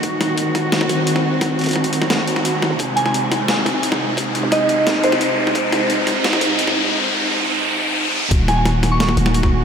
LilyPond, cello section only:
\new Staff \with { instrumentName = "Cello section" } { \time 4/4 \key ees \dorian \tempo 4 = 174 <ees c' ges'>1~ | <ees c' ges'>1 | <c aes ees'>1~ | <c aes ees'>1~ |
<c aes ees'>1~ | <c aes ees'>1 | <ees bes ges'>1 | }